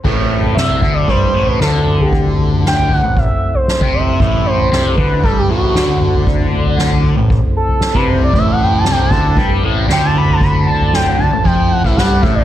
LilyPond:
<<
  \new Staff \with { instrumentName = "Analog synth lead" } { \time 4/4 \key a \dorian \tempo 4 = 116 r4 e''8. d''16 c''8. b'16 a'8. g'16~ | g'16 r8. g''8 fis''8 e''8. c''8. e''8~ | e''8 c''4 b'8 a'16 g'16 fis'4. | r2 r8 a'8. b'16 c''16 d''16 |
e''16 fis''16 g''16 a''16 g''16 a''4 r8. g''16 a''16 b''16 a''16 | b''8 a''8 g''8 a''8 g''8 fis''16 e''16 fis''8 e''16 d''16 | }
  \new Staff \with { instrumentName = "Tonewheel organ" } { \time 4/4 \key a \dorian <a c' e' a' c''>1~ | <a c' e' a' c''>1~ | <a c' e' a' c''>1~ | <a c' e' a' c''>1~ |
<a c' e' a' c''>1~ | <a c' e' a' c''>1 | }
  \new Staff \with { instrumentName = "Distorted electric guitar" } { \clef bass \time 4/4 \key a \dorian a,4 c8 d8 g8 a,8 d4~ | d4.~ d16 a,8 r4 c8. | a,4 c8 d8 g8 a,8 d4~ | d4.~ d16 a,8 r4 c8. |
a,4 c8 d8 g8 a,8 d4~ | d4.~ d16 a,16 f8. a,16 g8 a,8 | }
  \new Staff \with { instrumentName = "Picked electric bass" } { \clef bass \time 4/4 \key a \dorian a,,4 c,8 d,8 g,8 a,,8 d,4~ | d,4.~ d,16 a,,8 r4 c,8. | a,,4 c,8 d,8 g,8 a,,8 d,4~ | d,4.~ d,16 a,,8 r4 c,8. |
a,,4 c,8 d,8 g,8 a,,8 d,4~ | d,4.~ d,16 a,,16 f,8. a,,16 g,8 a,,8 | }
  \new DrumStaff \with { instrumentName = "Drums" } \drummode { \time 4/4 <cymc bd tomfh>16 toml8 tomfh16 sn16 tomfh16 <bd tomfh toml>8 <bd tomfh>16 tomfh8 tomfh16 <sn toml>8 toml16 tomfh16 | <bd tomfh>16 toml16 tomfh16 tomfh16 sn16 tomfh16 <tomfh toml>8 <bd tomfh>16 tomfh8 tomfh16 <sn toml>16 <bd tomfh>16 toml16 tomfh16 | <bd tomfh>16 toml8 tomfh16 sn16 tomfh16 <bd tomfh toml>8 <bd tomfh>16 tomfh8 tomfh16 <sn toml>8 toml16 tomfh16 | <bd tomfh>16 toml16 tomfh16 tomfh16 sn16 tomfh16 <tomfh toml>8 <bd tomfh>16 tomfh8 tomfh16 <sn toml>16 <bd tomfh>16 toml16 tomfh16 |
<bd tomfh>16 toml8 tomfh16 sn16 tomfh16 <bd tomfh toml>8 <bd tomfh>16 tomfh8 tomfh16 <sn toml>8 toml16 tomfh16 | <bd tomfh>16 toml16 tomfh16 tomfh16 sn16 tomfh16 <tomfh toml>8 <bd tomfh>16 tomfh8 <bd tomfh>16 <sn toml>16 tomfh16 <bd toml>16 tomfh16 | }
>>